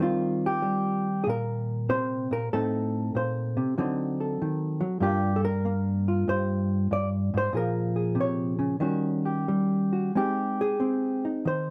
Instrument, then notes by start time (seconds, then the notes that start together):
hollow-body jazz guitar
Already playing: G4
0.00 D#3 G3 C4 F4
0.46 G4
0.62 G3
1.24 A#2 G#4
1.30 A#4
1.89 C3 C5
2.31 A#2 A#4
2.53 A2 A3 C4 D#4 A4
3.15 A#2 C5
3.57 C3
3.78 D3 F#3 C4 D#4
4.20 A4
4.42 D#3
4.81 F#3
5.00 G2 A#3 D4 F4 G4
5.36 A4
5.45 A#4
5.65 A#3
6.08 F4
6.28 G2 C5
6.91 G2 D5
7.34 G#2 C5
7.53 A#2 F3 G#4 A#4
7.96 G#4
8.15 C3
8.21 C#5
8.59 C#3
8.80 D#3 G3 C#4 F#4
9.25 G4
9.48 G3
9.93 F#4
10.15 G#3 C4 D#4 G4
10.61 G#4
10.80 C4
11.25 D#4
11.45 D#3 C5